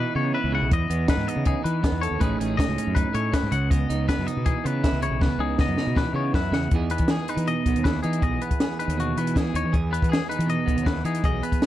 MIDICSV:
0, 0, Header, 1, 5, 480
1, 0, Start_track
1, 0, Tempo, 375940
1, 908, Time_signature, 4, 2, 24, 8
1, 14887, End_track
2, 0, Start_track
2, 0, Title_t, "Clean electric guitar"
2, 0, Program_c, 0, 27
2, 0, Note_on_c, 0, 71, 87
2, 197, Note_off_c, 0, 71, 0
2, 205, Note_on_c, 0, 73, 64
2, 436, Note_off_c, 0, 73, 0
2, 441, Note_on_c, 0, 71, 79
2, 675, Note_off_c, 0, 71, 0
2, 698, Note_on_c, 0, 78, 70
2, 923, Note_off_c, 0, 78, 0
2, 936, Note_on_c, 0, 75, 82
2, 1394, Note_off_c, 0, 75, 0
2, 1399, Note_on_c, 0, 71, 76
2, 1632, Note_off_c, 0, 71, 0
2, 1632, Note_on_c, 0, 75, 74
2, 1868, Note_off_c, 0, 75, 0
2, 1874, Note_on_c, 0, 68, 85
2, 2092, Note_off_c, 0, 68, 0
2, 2098, Note_on_c, 0, 71, 75
2, 2572, Note_on_c, 0, 73, 73
2, 2580, Note_off_c, 0, 71, 0
2, 2816, Note_on_c, 0, 71, 84
2, 2817, Note_off_c, 0, 73, 0
2, 3049, Note_off_c, 0, 71, 0
2, 3049, Note_on_c, 0, 68, 73
2, 3286, Note_on_c, 0, 75, 78
2, 3295, Note_off_c, 0, 68, 0
2, 3764, Note_on_c, 0, 71, 92
2, 3772, Note_off_c, 0, 75, 0
2, 4012, Note_off_c, 0, 71, 0
2, 4018, Note_on_c, 0, 73, 71
2, 4258, Note_off_c, 0, 73, 0
2, 4261, Note_on_c, 0, 71, 85
2, 4494, Note_on_c, 0, 78, 74
2, 4499, Note_off_c, 0, 71, 0
2, 4729, Note_off_c, 0, 78, 0
2, 4729, Note_on_c, 0, 75, 90
2, 5212, Note_off_c, 0, 75, 0
2, 5217, Note_on_c, 0, 71, 82
2, 5446, Note_off_c, 0, 71, 0
2, 5446, Note_on_c, 0, 75, 72
2, 5691, Note_off_c, 0, 75, 0
2, 5691, Note_on_c, 0, 68, 85
2, 5944, Note_off_c, 0, 68, 0
2, 5944, Note_on_c, 0, 71, 75
2, 6415, Note_off_c, 0, 71, 0
2, 6420, Note_on_c, 0, 73, 72
2, 6661, Note_off_c, 0, 73, 0
2, 6661, Note_on_c, 0, 71, 85
2, 6897, Note_off_c, 0, 71, 0
2, 6899, Note_on_c, 0, 68, 75
2, 7136, Note_off_c, 0, 68, 0
2, 7159, Note_on_c, 0, 75, 81
2, 7626, Note_off_c, 0, 75, 0
2, 7626, Note_on_c, 0, 71, 82
2, 7856, Note_off_c, 0, 71, 0
2, 7861, Note_on_c, 0, 73, 72
2, 8097, Note_off_c, 0, 73, 0
2, 8107, Note_on_c, 0, 71, 78
2, 8340, Note_off_c, 0, 71, 0
2, 8348, Note_on_c, 0, 78, 68
2, 8581, Note_off_c, 0, 78, 0
2, 8824, Note_on_c, 0, 71, 65
2, 9070, Note_off_c, 0, 71, 0
2, 9070, Note_on_c, 0, 68, 76
2, 9307, Note_off_c, 0, 68, 0
2, 9307, Note_on_c, 0, 71, 64
2, 9541, Note_off_c, 0, 71, 0
2, 9546, Note_on_c, 0, 75, 82
2, 10011, Note_on_c, 0, 71, 74
2, 10022, Note_off_c, 0, 75, 0
2, 10242, Note_off_c, 0, 71, 0
2, 10247, Note_on_c, 0, 68, 67
2, 10493, Note_off_c, 0, 68, 0
2, 10508, Note_on_c, 0, 75, 77
2, 10744, Note_off_c, 0, 75, 0
2, 10747, Note_on_c, 0, 71, 66
2, 11212, Note_off_c, 0, 71, 0
2, 11228, Note_on_c, 0, 71, 72
2, 11464, Note_off_c, 0, 71, 0
2, 11490, Note_on_c, 0, 66, 81
2, 11716, Note_off_c, 0, 66, 0
2, 11719, Note_on_c, 0, 71, 65
2, 11966, Note_off_c, 0, 71, 0
2, 11966, Note_on_c, 0, 68, 72
2, 12195, Note_off_c, 0, 68, 0
2, 12207, Note_on_c, 0, 73, 74
2, 12436, Note_off_c, 0, 73, 0
2, 12675, Note_on_c, 0, 71, 70
2, 12911, Note_off_c, 0, 71, 0
2, 12920, Note_on_c, 0, 68, 75
2, 13139, Note_off_c, 0, 68, 0
2, 13145, Note_on_c, 0, 71, 72
2, 13386, Note_off_c, 0, 71, 0
2, 13401, Note_on_c, 0, 75, 86
2, 13872, Note_on_c, 0, 71, 70
2, 13876, Note_off_c, 0, 75, 0
2, 14112, Note_off_c, 0, 71, 0
2, 14117, Note_on_c, 0, 68, 67
2, 14355, Note_off_c, 0, 68, 0
2, 14366, Note_on_c, 0, 75, 80
2, 14595, Note_on_c, 0, 71, 67
2, 14600, Note_off_c, 0, 75, 0
2, 14887, Note_off_c, 0, 71, 0
2, 14887, End_track
3, 0, Start_track
3, 0, Title_t, "Clean electric guitar"
3, 0, Program_c, 1, 27
3, 0, Note_on_c, 1, 52, 59
3, 0, Note_on_c, 1, 59, 60
3, 0, Note_on_c, 1, 63, 58
3, 0, Note_on_c, 1, 64, 59
3, 187, Note_off_c, 1, 59, 0
3, 192, Note_on_c, 1, 59, 56
3, 427, Note_off_c, 1, 64, 0
3, 432, Note_on_c, 1, 64, 59
3, 667, Note_on_c, 1, 49, 75
3, 705, Note_off_c, 1, 59, 0
3, 705, Note_off_c, 1, 63, 0
3, 878, Note_off_c, 1, 49, 0
3, 899, Note_on_c, 1, 40, 69
3, 1146, Note_on_c, 1, 59, 59
3, 1376, Note_on_c, 1, 63, 56
3, 1415, Note_off_c, 1, 52, 0
3, 1616, Note_off_c, 1, 59, 0
3, 1621, Note_on_c, 1, 59, 61
3, 1857, Note_off_c, 1, 63, 0
3, 1862, Note_on_c, 1, 63, 59
3, 2087, Note_on_c, 1, 52, 61
3, 2329, Note_off_c, 1, 59, 0
3, 2335, Note_on_c, 1, 59, 56
3, 2580, Note_off_c, 1, 64, 0
3, 2585, Note_on_c, 1, 69, 61
3, 2795, Note_off_c, 1, 69, 0
3, 2800, Note_on_c, 1, 45, 75
3, 2802, Note_off_c, 1, 52, 0
3, 2807, Note_on_c, 1, 57, 63
3, 2812, Note_off_c, 1, 59, 0
3, 2817, Note_on_c, 1, 61, 63
3, 2818, Note_off_c, 1, 40, 0
3, 2822, Note_off_c, 1, 63, 0
3, 2827, Note_on_c, 1, 63, 64
3, 2836, Note_on_c, 1, 68, 71
3, 3061, Note_off_c, 1, 61, 0
3, 3066, Note_on_c, 1, 61, 56
3, 3290, Note_off_c, 1, 63, 0
3, 3295, Note_on_c, 1, 63, 53
3, 3546, Note_off_c, 1, 61, 0
3, 3552, Note_on_c, 1, 61, 60
3, 3762, Note_off_c, 1, 63, 0
3, 3767, Note_on_c, 1, 63, 59
3, 3988, Note_off_c, 1, 57, 0
3, 4003, Note_on_c, 1, 57, 60
3, 4239, Note_off_c, 1, 61, 0
3, 4244, Note_on_c, 1, 61, 58
3, 4461, Note_off_c, 1, 57, 0
3, 4472, Note_off_c, 1, 45, 0
3, 4477, Note_on_c, 1, 49, 74
3, 4516, Note_off_c, 1, 63, 0
3, 4729, Note_off_c, 1, 61, 0
3, 4734, Note_on_c, 1, 59, 66
3, 4975, Note_on_c, 1, 63, 59
3, 5202, Note_off_c, 1, 59, 0
3, 5208, Note_on_c, 1, 59, 58
3, 5443, Note_off_c, 1, 63, 0
3, 5448, Note_on_c, 1, 63, 60
3, 5677, Note_on_c, 1, 52, 61
3, 5685, Note_off_c, 1, 49, 0
3, 5921, Note_off_c, 1, 59, 0
3, 5926, Note_on_c, 1, 59, 56
3, 6168, Note_off_c, 1, 68, 0
3, 6173, Note_on_c, 1, 64, 61
3, 6405, Note_on_c, 1, 49, 73
3, 6443, Note_off_c, 1, 59, 0
3, 6443, Note_off_c, 1, 63, 0
3, 6651, Note_on_c, 1, 59, 63
3, 6883, Note_on_c, 1, 63, 58
3, 6922, Note_off_c, 1, 52, 0
3, 7123, Note_off_c, 1, 59, 0
3, 7138, Note_on_c, 1, 59, 54
3, 7368, Note_off_c, 1, 63, 0
3, 7384, Note_on_c, 1, 63, 55
3, 7601, Note_on_c, 1, 52, 66
3, 7608, Note_off_c, 1, 49, 0
3, 7830, Note_off_c, 1, 59, 0
3, 7845, Note_on_c, 1, 59, 58
3, 8089, Note_off_c, 1, 64, 0
3, 8104, Note_on_c, 1, 64, 58
3, 8299, Note_off_c, 1, 52, 0
3, 8301, Note_off_c, 1, 59, 0
3, 8310, Note_off_c, 1, 63, 0
3, 8326, Note_on_c, 1, 49, 66
3, 8541, Note_off_c, 1, 49, 0
3, 8590, Note_on_c, 1, 40, 69
3, 8602, Note_on_c, 1, 52, 61
3, 8610, Note_on_c, 1, 59, 58
3, 8616, Note_on_c, 1, 63, 56
3, 8621, Note_off_c, 1, 64, 0
3, 8626, Note_on_c, 1, 68, 64
3, 8821, Note_off_c, 1, 59, 0
3, 8826, Note_on_c, 1, 59, 51
3, 9065, Note_off_c, 1, 68, 0
3, 9070, Note_on_c, 1, 68, 55
3, 9304, Note_off_c, 1, 63, 0
3, 9309, Note_on_c, 1, 63, 56
3, 9539, Note_on_c, 1, 47, 59
3, 9784, Note_off_c, 1, 59, 0
3, 9789, Note_on_c, 1, 59, 57
3, 10012, Note_off_c, 1, 52, 0
3, 10017, Note_on_c, 1, 52, 63
3, 10018, Note_off_c, 1, 47, 0
3, 10259, Note_off_c, 1, 63, 0
3, 10264, Note_on_c, 1, 63, 55
3, 10476, Note_off_c, 1, 40, 0
3, 10481, Note_on_c, 1, 40, 74
3, 10492, Note_off_c, 1, 68, 0
3, 10497, Note_on_c, 1, 68, 64
3, 10519, Note_off_c, 1, 63, 0
3, 10737, Note_off_c, 1, 59, 0
3, 10742, Note_on_c, 1, 59, 49
3, 10987, Note_off_c, 1, 68, 0
3, 10992, Note_on_c, 1, 68, 54
3, 11246, Note_on_c, 1, 63, 56
3, 11284, Note_off_c, 1, 52, 0
3, 11457, Note_on_c, 1, 47, 63
3, 11720, Note_off_c, 1, 59, 0
3, 11725, Note_on_c, 1, 59, 52
3, 11940, Note_off_c, 1, 47, 0
3, 11940, Note_on_c, 1, 52, 62
3, 12181, Note_off_c, 1, 63, 0
3, 12186, Note_on_c, 1, 63, 55
3, 12405, Note_off_c, 1, 40, 0
3, 12410, Note_on_c, 1, 40, 70
3, 12414, Note_off_c, 1, 68, 0
3, 12419, Note_on_c, 1, 68, 65
3, 12448, Note_off_c, 1, 63, 0
3, 12646, Note_off_c, 1, 59, 0
3, 12651, Note_on_c, 1, 59, 53
3, 12882, Note_off_c, 1, 68, 0
3, 12887, Note_on_c, 1, 68, 55
3, 13138, Note_on_c, 1, 63, 57
3, 13176, Note_off_c, 1, 52, 0
3, 13358, Note_on_c, 1, 47, 59
3, 13602, Note_off_c, 1, 59, 0
3, 13607, Note_on_c, 1, 59, 55
3, 13854, Note_on_c, 1, 52, 59
3, 13855, Note_off_c, 1, 47, 0
3, 14099, Note_off_c, 1, 63, 0
3, 14104, Note_on_c, 1, 63, 60
3, 14315, Note_off_c, 1, 52, 0
3, 14328, Note_off_c, 1, 40, 0
3, 14343, Note_on_c, 1, 40, 70
3, 14347, Note_off_c, 1, 68, 0
3, 14352, Note_on_c, 1, 68, 69
3, 14382, Note_off_c, 1, 63, 0
3, 14588, Note_off_c, 1, 59, 0
3, 14593, Note_on_c, 1, 59, 56
3, 14847, Note_off_c, 1, 68, 0
3, 14887, Note_off_c, 1, 40, 0
3, 14887, Note_off_c, 1, 59, 0
3, 14887, End_track
4, 0, Start_track
4, 0, Title_t, "Fingered electric bass"
4, 0, Program_c, 2, 33
4, 193, Note_on_c, 2, 49, 80
4, 401, Note_off_c, 2, 49, 0
4, 558, Note_on_c, 2, 37, 83
4, 764, Note_off_c, 2, 37, 0
4, 790, Note_on_c, 2, 35, 76
4, 894, Note_off_c, 2, 35, 0
4, 912, Note_on_c, 2, 40, 102
4, 1119, Note_off_c, 2, 40, 0
4, 1146, Note_on_c, 2, 40, 84
4, 1356, Note_off_c, 2, 40, 0
4, 1498, Note_on_c, 2, 44, 86
4, 1606, Note_off_c, 2, 44, 0
4, 1740, Note_on_c, 2, 49, 78
4, 1952, Note_off_c, 2, 49, 0
4, 2105, Note_on_c, 2, 52, 82
4, 2314, Note_off_c, 2, 52, 0
4, 2452, Note_on_c, 2, 40, 92
4, 2666, Note_off_c, 2, 40, 0
4, 2696, Note_on_c, 2, 39, 83
4, 2803, Note_off_c, 2, 39, 0
4, 2826, Note_on_c, 2, 33, 101
4, 3034, Note_off_c, 2, 33, 0
4, 3058, Note_on_c, 2, 33, 83
4, 3269, Note_off_c, 2, 33, 0
4, 3420, Note_on_c, 2, 37, 82
4, 3525, Note_off_c, 2, 37, 0
4, 3666, Note_on_c, 2, 42, 85
4, 3873, Note_off_c, 2, 42, 0
4, 4013, Note_on_c, 2, 45, 77
4, 4225, Note_off_c, 2, 45, 0
4, 4379, Note_on_c, 2, 44, 88
4, 4484, Note_off_c, 2, 44, 0
4, 4491, Note_on_c, 2, 37, 99
4, 4913, Note_off_c, 2, 37, 0
4, 4976, Note_on_c, 2, 37, 89
4, 5186, Note_off_c, 2, 37, 0
4, 5342, Note_on_c, 2, 42, 87
4, 5444, Note_off_c, 2, 42, 0
4, 5578, Note_on_c, 2, 47, 85
4, 5786, Note_off_c, 2, 47, 0
4, 5938, Note_on_c, 2, 49, 84
4, 6146, Note_off_c, 2, 49, 0
4, 6287, Note_on_c, 2, 37, 88
4, 6500, Note_off_c, 2, 37, 0
4, 6516, Note_on_c, 2, 35, 79
4, 6733, Note_off_c, 2, 35, 0
4, 6868, Note_on_c, 2, 37, 85
4, 7089, Note_off_c, 2, 37, 0
4, 7250, Note_on_c, 2, 42, 79
4, 7356, Note_off_c, 2, 42, 0
4, 7494, Note_on_c, 2, 47, 78
4, 7703, Note_off_c, 2, 47, 0
4, 7831, Note_on_c, 2, 49, 81
4, 8050, Note_off_c, 2, 49, 0
4, 8093, Note_on_c, 2, 42, 81
4, 8306, Note_off_c, 2, 42, 0
4, 8314, Note_on_c, 2, 40, 85
4, 8539, Note_off_c, 2, 40, 0
4, 8575, Note_on_c, 2, 40, 87
4, 8890, Note_off_c, 2, 40, 0
4, 8932, Note_on_c, 2, 52, 71
4, 9143, Note_off_c, 2, 52, 0
4, 9407, Note_on_c, 2, 52, 82
4, 9621, Note_off_c, 2, 52, 0
4, 9780, Note_on_c, 2, 35, 74
4, 9883, Note_off_c, 2, 35, 0
4, 9890, Note_on_c, 2, 39, 77
4, 10208, Note_off_c, 2, 39, 0
4, 10268, Note_on_c, 2, 52, 85
4, 10473, Note_off_c, 2, 52, 0
4, 10493, Note_on_c, 2, 35, 100
4, 10705, Note_off_c, 2, 35, 0
4, 11333, Note_on_c, 2, 39, 83
4, 11652, Note_off_c, 2, 39, 0
4, 11706, Note_on_c, 2, 52, 73
4, 12125, Note_off_c, 2, 52, 0
4, 12183, Note_on_c, 2, 39, 85
4, 12288, Note_off_c, 2, 39, 0
4, 12304, Note_on_c, 2, 52, 73
4, 12409, Note_off_c, 2, 52, 0
4, 12437, Note_on_c, 2, 40, 92
4, 12747, Note_off_c, 2, 40, 0
4, 12798, Note_on_c, 2, 52, 69
4, 13003, Note_off_c, 2, 52, 0
4, 13264, Note_on_c, 2, 52, 88
4, 13476, Note_off_c, 2, 52, 0
4, 13637, Note_on_c, 2, 35, 81
4, 13738, Note_off_c, 2, 35, 0
4, 13752, Note_on_c, 2, 39, 75
4, 14066, Note_off_c, 2, 39, 0
4, 14100, Note_on_c, 2, 52, 95
4, 14315, Note_off_c, 2, 52, 0
4, 14352, Note_on_c, 2, 35, 95
4, 14563, Note_off_c, 2, 35, 0
4, 14887, End_track
5, 0, Start_track
5, 0, Title_t, "Drums"
5, 913, Note_on_c, 9, 42, 89
5, 915, Note_on_c, 9, 36, 105
5, 1040, Note_off_c, 9, 42, 0
5, 1043, Note_off_c, 9, 36, 0
5, 1157, Note_on_c, 9, 42, 69
5, 1284, Note_off_c, 9, 42, 0
5, 1383, Note_on_c, 9, 38, 105
5, 1383, Note_on_c, 9, 42, 93
5, 1389, Note_on_c, 9, 36, 112
5, 1511, Note_off_c, 9, 38, 0
5, 1511, Note_off_c, 9, 42, 0
5, 1512, Note_on_c, 9, 38, 33
5, 1517, Note_off_c, 9, 36, 0
5, 1640, Note_off_c, 9, 38, 0
5, 1641, Note_on_c, 9, 42, 57
5, 1768, Note_off_c, 9, 42, 0
5, 1857, Note_on_c, 9, 42, 73
5, 1867, Note_on_c, 9, 36, 98
5, 1985, Note_off_c, 9, 42, 0
5, 1995, Note_off_c, 9, 36, 0
5, 2115, Note_on_c, 9, 42, 62
5, 2243, Note_off_c, 9, 42, 0
5, 2347, Note_on_c, 9, 36, 97
5, 2352, Note_on_c, 9, 38, 106
5, 2352, Note_on_c, 9, 42, 84
5, 2475, Note_off_c, 9, 36, 0
5, 2480, Note_off_c, 9, 38, 0
5, 2480, Note_off_c, 9, 42, 0
5, 2592, Note_on_c, 9, 42, 63
5, 2720, Note_off_c, 9, 42, 0
5, 2821, Note_on_c, 9, 42, 86
5, 2825, Note_on_c, 9, 36, 104
5, 2949, Note_off_c, 9, 42, 0
5, 2953, Note_off_c, 9, 36, 0
5, 3076, Note_on_c, 9, 42, 67
5, 3204, Note_off_c, 9, 42, 0
5, 3306, Note_on_c, 9, 36, 112
5, 3317, Note_on_c, 9, 38, 113
5, 3317, Note_on_c, 9, 42, 93
5, 3432, Note_off_c, 9, 38, 0
5, 3432, Note_on_c, 9, 38, 31
5, 3433, Note_off_c, 9, 36, 0
5, 3444, Note_off_c, 9, 42, 0
5, 3552, Note_on_c, 9, 42, 70
5, 3560, Note_off_c, 9, 38, 0
5, 3680, Note_off_c, 9, 42, 0
5, 3783, Note_on_c, 9, 36, 98
5, 3784, Note_on_c, 9, 42, 89
5, 3910, Note_off_c, 9, 36, 0
5, 3912, Note_off_c, 9, 42, 0
5, 4015, Note_on_c, 9, 42, 75
5, 4143, Note_off_c, 9, 42, 0
5, 4258, Note_on_c, 9, 36, 107
5, 4260, Note_on_c, 9, 38, 106
5, 4260, Note_on_c, 9, 42, 92
5, 4386, Note_off_c, 9, 36, 0
5, 4387, Note_off_c, 9, 38, 0
5, 4387, Note_off_c, 9, 42, 0
5, 4493, Note_on_c, 9, 42, 70
5, 4621, Note_off_c, 9, 42, 0
5, 4737, Note_on_c, 9, 36, 109
5, 4741, Note_on_c, 9, 42, 92
5, 4865, Note_off_c, 9, 36, 0
5, 4868, Note_off_c, 9, 42, 0
5, 4982, Note_on_c, 9, 42, 67
5, 5110, Note_off_c, 9, 42, 0
5, 5219, Note_on_c, 9, 36, 104
5, 5224, Note_on_c, 9, 38, 110
5, 5224, Note_on_c, 9, 42, 93
5, 5341, Note_off_c, 9, 38, 0
5, 5341, Note_on_c, 9, 38, 30
5, 5346, Note_off_c, 9, 36, 0
5, 5352, Note_off_c, 9, 42, 0
5, 5460, Note_on_c, 9, 42, 67
5, 5468, Note_off_c, 9, 38, 0
5, 5588, Note_off_c, 9, 42, 0
5, 5692, Note_on_c, 9, 42, 87
5, 5698, Note_on_c, 9, 36, 102
5, 5819, Note_off_c, 9, 42, 0
5, 5825, Note_off_c, 9, 36, 0
5, 5948, Note_on_c, 9, 42, 69
5, 6076, Note_off_c, 9, 42, 0
5, 6180, Note_on_c, 9, 36, 113
5, 6182, Note_on_c, 9, 38, 110
5, 6182, Note_on_c, 9, 42, 82
5, 6308, Note_off_c, 9, 36, 0
5, 6309, Note_off_c, 9, 38, 0
5, 6309, Note_off_c, 9, 42, 0
5, 6414, Note_on_c, 9, 42, 63
5, 6541, Note_off_c, 9, 42, 0
5, 6658, Note_on_c, 9, 36, 106
5, 6663, Note_on_c, 9, 38, 62
5, 6786, Note_off_c, 9, 36, 0
5, 6790, Note_off_c, 9, 38, 0
5, 7129, Note_on_c, 9, 38, 70
5, 7137, Note_on_c, 9, 36, 111
5, 7257, Note_off_c, 9, 38, 0
5, 7264, Note_off_c, 9, 36, 0
5, 7373, Note_on_c, 9, 38, 61
5, 7501, Note_off_c, 9, 38, 0
5, 7616, Note_on_c, 9, 36, 96
5, 7620, Note_on_c, 9, 38, 75
5, 7744, Note_off_c, 9, 36, 0
5, 7748, Note_off_c, 9, 38, 0
5, 8097, Note_on_c, 9, 36, 112
5, 8098, Note_on_c, 9, 38, 94
5, 8225, Note_off_c, 9, 36, 0
5, 8225, Note_off_c, 9, 38, 0
5, 8335, Note_on_c, 9, 38, 83
5, 8463, Note_off_c, 9, 38, 0
5, 8571, Note_on_c, 9, 42, 56
5, 8575, Note_on_c, 9, 36, 107
5, 8698, Note_off_c, 9, 42, 0
5, 8703, Note_off_c, 9, 36, 0
5, 8809, Note_on_c, 9, 42, 60
5, 8914, Note_off_c, 9, 42, 0
5, 8914, Note_on_c, 9, 42, 55
5, 8931, Note_on_c, 9, 36, 78
5, 9039, Note_off_c, 9, 42, 0
5, 9039, Note_on_c, 9, 38, 107
5, 9039, Note_on_c, 9, 42, 56
5, 9059, Note_off_c, 9, 36, 0
5, 9167, Note_off_c, 9, 38, 0
5, 9167, Note_off_c, 9, 42, 0
5, 9295, Note_on_c, 9, 42, 56
5, 9417, Note_off_c, 9, 42, 0
5, 9417, Note_on_c, 9, 42, 58
5, 9543, Note_off_c, 9, 42, 0
5, 9543, Note_on_c, 9, 42, 50
5, 9670, Note_off_c, 9, 42, 0
5, 9778, Note_on_c, 9, 36, 72
5, 9780, Note_on_c, 9, 42, 58
5, 9906, Note_off_c, 9, 36, 0
5, 9906, Note_off_c, 9, 42, 0
5, 9906, Note_on_c, 9, 42, 51
5, 10024, Note_on_c, 9, 36, 98
5, 10031, Note_off_c, 9, 42, 0
5, 10031, Note_on_c, 9, 38, 100
5, 10031, Note_on_c, 9, 42, 58
5, 10152, Note_off_c, 9, 36, 0
5, 10159, Note_off_c, 9, 38, 0
5, 10159, Note_off_c, 9, 42, 0
5, 10257, Note_on_c, 9, 42, 56
5, 10381, Note_off_c, 9, 42, 0
5, 10381, Note_on_c, 9, 42, 55
5, 10500, Note_on_c, 9, 36, 98
5, 10502, Note_off_c, 9, 42, 0
5, 10502, Note_on_c, 9, 42, 56
5, 10627, Note_off_c, 9, 36, 0
5, 10630, Note_off_c, 9, 42, 0
5, 10745, Note_on_c, 9, 42, 58
5, 10864, Note_on_c, 9, 36, 72
5, 10865, Note_off_c, 9, 42, 0
5, 10865, Note_on_c, 9, 42, 56
5, 10983, Note_off_c, 9, 42, 0
5, 10983, Note_on_c, 9, 38, 106
5, 10983, Note_on_c, 9, 42, 59
5, 10992, Note_off_c, 9, 36, 0
5, 11110, Note_off_c, 9, 38, 0
5, 11110, Note_off_c, 9, 42, 0
5, 11233, Note_on_c, 9, 42, 55
5, 11360, Note_off_c, 9, 42, 0
5, 11360, Note_on_c, 9, 42, 61
5, 11487, Note_off_c, 9, 42, 0
5, 11488, Note_on_c, 9, 42, 53
5, 11616, Note_off_c, 9, 42, 0
5, 11715, Note_on_c, 9, 42, 63
5, 11837, Note_off_c, 9, 42, 0
5, 11837, Note_on_c, 9, 42, 58
5, 11951, Note_on_c, 9, 36, 92
5, 11959, Note_off_c, 9, 42, 0
5, 11959, Note_on_c, 9, 38, 98
5, 11959, Note_on_c, 9, 42, 60
5, 12079, Note_off_c, 9, 36, 0
5, 12087, Note_off_c, 9, 38, 0
5, 12087, Note_off_c, 9, 42, 0
5, 12197, Note_on_c, 9, 42, 65
5, 12325, Note_off_c, 9, 42, 0
5, 12433, Note_on_c, 9, 36, 101
5, 12434, Note_on_c, 9, 42, 58
5, 12561, Note_off_c, 9, 36, 0
5, 12562, Note_off_c, 9, 42, 0
5, 12691, Note_on_c, 9, 42, 58
5, 12799, Note_on_c, 9, 36, 76
5, 12819, Note_off_c, 9, 42, 0
5, 12820, Note_on_c, 9, 42, 52
5, 12926, Note_off_c, 9, 36, 0
5, 12939, Note_off_c, 9, 42, 0
5, 12939, Note_on_c, 9, 38, 100
5, 12939, Note_on_c, 9, 42, 60
5, 13067, Note_off_c, 9, 38, 0
5, 13067, Note_off_c, 9, 42, 0
5, 13168, Note_on_c, 9, 42, 59
5, 13284, Note_off_c, 9, 42, 0
5, 13284, Note_on_c, 9, 42, 60
5, 13399, Note_off_c, 9, 42, 0
5, 13399, Note_on_c, 9, 42, 55
5, 13527, Note_off_c, 9, 42, 0
5, 13632, Note_on_c, 9, 36, 73
5, 13639, Note_on_c, 9, 42, 56
5, 13760, Note_off_c, 9, 36, 0
5, 13760, Note_off_c, 9, 42, 0
5, 13760, Note_on_c, 9, 42, 53
5, 13871, Note_on_c, 9, 36, 100
5, 13876, Note_off_c, 9, 42, 0
5, 13876, Note_on_c, 9, 38, 95
5, 13876, Note_on_c, 9, 42, 51
5, 13998, Note_off_c, 9, 36, 0
5, 14004, Note_off_c, 9, 38, 0
5, 14004, Note_off_c, 9, 42, 0
5, 14109, Note_on_c, 9, 42, 55
5, 14232, Note_off_c, 9, 42, 0
5, 14232, Note_on_c, 9, 42, 55
5, 14349, Note_off_c, 9, 42, 0
5, 14349, Note_on_c, 9, 36, 102
5, 14349, Note_on_c, 9, 42, 58
5, 14476, Note_off_c, 9, 36, 0
5, 14476, Note_off_c, 9, 42, 0
5, 14598, Note_on_c, 9, 42, 55
5, 14711, Note_on_c, 9, 36, 73
5, 14715, Note_off_c, 9, 42, 0
5, 14715, Note_on_c, 9, 42, 52
5, 14837, Note_off_c, 9, 42, 0
5, 14837, Note_on_c, 9, 38, 100
5, 14837, Note_on_c, 9, 42, 56
5, 14839, Note_off_c, 9, 36, 0
5, 14887, Note_off_c, 9, 38, 0
5, 14887, Note_off_c, 9, 42, 0
5, 14887, End_track
0, 0, End_of_file